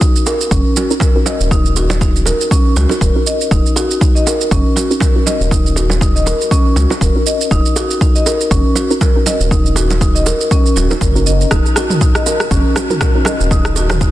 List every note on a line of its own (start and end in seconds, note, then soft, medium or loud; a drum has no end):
0.00 0.87 C#4 medium
0.00 0.87 D#4 medium
0.00 0.14 D#4 medium
0.00 kick loud
0.00 shaker medium
0.16 shaker soft
0.26 0.34 A#4 medium
0.26 high bongo medium
0.26 shaker medium
0.41 shaker soft
0.51 0.60 F#1 loud
0.51 0.64 C#4 loud
0.51 kick loud
0.51 shaker medium
0.76 0.89 F#4 medium
0.76 low bongo medium
0.76 shaker medium
0.90 1.06 C#4 medium
0.90 1.06 D#4 medium
0.90 1.06 F#4 medium
0.90 1.06 A#4 medium
0.90 shaker soft
1.00 1.15 A#4 medium
1.00 kick loud
1.00 low bongo medium
1.00 shaker medium
1.15 2.87 C#4 medium
1.15 2.87 D#4 medium
1.15 2.87 F#4 medium
1.15 2.87 A#4 medium
1.26 1.40 D#5 medium
1.26 low bongo medium
1.26 shaker medium
1.40 2.31 D#1 medium
1.40 shaker soft
1.51 1.64 D#4 loud
1.51 kick loud
1.51 shaker soft
1.66 shaker soft
1.76 1.89 F#4 medium
1.76 high bongo medium
1.76 shaker medium
1.90 low bongo loud
1.90 shaker soft
2.01 2.14 D#4 medium
2.01 kick loud
2.01 shaker medium
2.16 shaker soft
2.26 2.34 A#4 medium
2.26 high bongo medium
2.26 low bongo medium
2.26 shaker medium
2.41 shaker soft
2.51 2.64 C#4 medium
2.51 kick loud
2.51 shaker medium
2.76 2.85 C#2 medium
2.76 2.89 F#4 medium
2.76 low bongo medium
2.76 shaker medium
2.89 3.06 C#4 medium
2.89 3.06 D#4 medium
2.89 3.06 F#4 medium
2.89 3.06 A#4 medium
2.89 low bongo medium
2.89 shaker soft
3.01 3.10 D#1 loud
3.01 3.15 A#4 medium
3.01 kick loud
3.01 shaker medium
3.16 4.87 C#4 medium
3.16 4.87 D#4 medium
3.16 4.87 F#4 medium
3.16 4.87 A#4 medium
3.26 3.40 D#5 medium
3.26 shaker medium
3.41 shaker soft
3.51 3.60 D#1 medium
3.51 3.64 D#4 medium
3.51 kick loud
3.51 shaker soft
3.66 shaker soft
3.76 3.89 F#4 medium
3.76 high bongo medium
3.76 shaker medium
3.91 shaker soft
4.01 4.14 D#4 medium
4.01 kick loud
4.01 shaker soft
4.15 4.21 D#5 medium
4.15 shaker soft
4.26 4.34 A#4 medium
4.26 high bongo medium
4.26 shaker medium
4.41 shaker soft
4.51 4.60 F#1 loud
4.51 4.64 C#4 loud
4.51 kick loud
4.51 shaker soft
4.76 4.89 F#4 medium
4.76 low bongo medium
4.76 shaker medium
4.90 5.06 C#4 medium
4.90 5.06 D#4 medium
4.90 5.06 F#4 medium
4.90 5.06 A#4 medium
4.90 shaker soft
5.00 5.15 A#4 medium
5.00 kick loud
5.00 low bongo medium
5.00 shaker medium
5.16 6.87 C#4 medium
5.16 6.87 D#4 medium
5.16 6.87 F#4 medium
5.16 6.87 A#4 medium
5.26 5.40 D#5 medium
5.26 low bongo medium
5.26 shaker medium
5.41 6.31 D#1 loud
5.41 shaker soft
5.51 5.64 D#4 loud
5.51 kick loud
5.51 shaker soft
5.66 shaker soft
5.76 5.89 F#4 medium
5.76 high bongo medium
5.76 shaker medium
5.90 low bongo medium
5.90 shaker soft
6.01 6.14 D#4 medium
6.01 kick loud
6.01 shaker soft
6.16 6.21 D#5 medium
6.16 shaker soft
6.26 6.34 A#4 medium
6.26 high bongo medium
6.26 low bongo medium
6.26 shaker medium
6.41 shaker soft
6.51 6.64 C#4 loud
6.51 kick loud
6.51 shaker soft
6.76 6.85 C#2 medium
6.76 6.89 F#4 medium
6.76 low bongo medium
6.76 shaker medium
6.90 7.06 C#4 medium
6.90 7.06 D#4 medium
6.90 7.06 F#4 medium
6.90 7.06 A#4 medium
6.90 low bongo medium
6.90 shaker soft
7.01 7.10 D#1 loud
7.01 7.15 A#4 medium
7.01 kick medium
7.01 shaker soft
7.16 8.87 C#4 medium
7.16 8.87 D#4 medium
7.16 8.87 F#4 medium
7.16 8.87 A#4 loud
7.26 7.40 D#5 medium
7.26 shaker medium
7.41 shaker soft
7.51 7.60 D#1 loud
7.51 7.64 D#4 loud
7.51 kick loud
7.51 shaker soft
7.66 shaker soft
7.76 7.89 F#4 medium
7.76 high bongo medium
7.76 shaker medium
7.91 shaker soft
8.01 8.14 D#4 medium
8.01 kick medium
8.01 shaker soft
8.15 8.21 D#5 medium
8.15 shaker soft
8.26 8.34 A#4 medium
8.26 high bongo medium
8.26 shaker medium
8.41 shaker soft
8.51 8.60 F#1 loud
8.51 8.64 C#4 loud
8.51 kick loud
8.51 shaker soft
8.75 8.89 F#4 medium
8.75 low bongo medium
8.75 shaker medium
8.91 9.06 C#4 medium
8.91 9.06 D#4 medium
8.91 9.06 F#4 medium
8.91 9.06 A#4 loud
8.91 shaker soft
9.01 9.15 A#4 medium
9.01 kick medium
9.01 low bongo medium
9.01 shaker soft
9.15 10.87 C#4 medium
9.15 10.87 D#4 medium
9.15 10.87 F#4 medium
9.15 10.87 A#4 medium
9.26 9.40 D#5 medium
9.26 low bongo medium
9.26 shaker medium
9.40 10.31 D#1 loud
9.40 shaker soft
9.51 9.64 D#4 loud
9.51 kick loud
9.51 shaker soft
9.66 shaker soft
9.76 9.89 F#4 medium
9.76 high bongo medium
9.76 shaker medium
9.90 low bongo medium
9.90 shaker soft
10.01 10.14 D#4 medium
10.01 kick medium
10.01 shaker soft
10.15 10.21 D#5 medium
10.15 shaker soft
10.26 10.34 A#4 medium
10.26 high bongo medium
10.26 low bongo medium
10.26 shaker medium
10.41 shaker soft
10.51 10.64 C#4 loud
10.51 kick loud
10.51 shaker soft
10.66 shaker soft
10.76 10.93 D#1 medium
10.76 10.89 F#4 medium
10.76 low bongo medium
10.76 shaker medium
10.91 11.06 C#4 medium
10.91 11.06 D#4 medium
10.91 11.06 F#4 medium
10.91 11.06 A#4 medium
10.91 low bongo medium
10.91 shaker soft
11.01 11.44 F#1 loud
11.01 11.15 A#4 medium
11.01 kick medium
11.01 shaker soft
11.15 12.87 C#4 medium
11.15 12.87 D#4 medium
11.15 12.87 F#4 medium
11.15 12.87 A#4 medium
11.15 shaker soft
11.26 11.40 D#5 medium
11.26 shaker medium
11.41 shaker soft
11.51 11.60 D#1 medium
11.51 11.64 D#4 loud
11.51 kick loud
11.51 cross-stick medium
11.51 shaker soft
11.66 shaker soft
11.76 11.89 F#4 medium
11.76 cross-stick medium
11.76 high bongo medium
11.76 shaker medium
11.90 mid tom medium
11.90 shaker soft
12.01 12.14 D#4 medium
12.01 kick loud
12.01 shaker medium
12.15 12.21 D#5 medium
12.15 cross-stick medium
12.15 shaker soft
12.26 12.34 A#4 medium
12.26 high bongo medium
12.26 shaker medium
12.40 cross-stick medium
12.40 shaker soft
12.51 12.60 F#1 loud
12.51 12.64 C#4 loud
12.51 kick loud
12.51 shaker soft
12.76 12.89 F#4 medium
12.76 cross-stick medium
12.76 low bongo medium
12.76 shaker medium
12.90 13.06 C#4 medium
12.90 13.06 D#4 medium
12.90 13.06 F#4 medium
12.90 13.06 A#4 medium
12.90 mid tom medium
12.90 shaker soft
13.01 13.15 A#4 medium
13.01 kick loud
13.01 cross-stick medium
13.01 low bongo loud
13.01 shaker soft
13.15 14.11 C#4 medium
13.15 14.11 D#4 medium
13.15 14.11 F#4 medium
13.15 14.11 A#4 medium
13.25 13.40 D#5 medium
13.25 cross-stick medium
13.25 low bongo medium
13.25 shaker medium
13.40 14.11 D#1 loud
13.40 shaker soft
13.51 13.64 D#4 loud
13.51 kick loud
13.51 shaker medium
13.65 cross-stick medium
13.65 shaker soft
13.76 13.89 F#4 medium
13.76 high bongo medium
13.76 shaker medium
13.90 cross-stick medium
13.90 mid tom medium
13.90 low bongo medium
13.90 shaker soft
14.01 14.11 D#4 medium
14.01 kick loud
14.01 shaker medium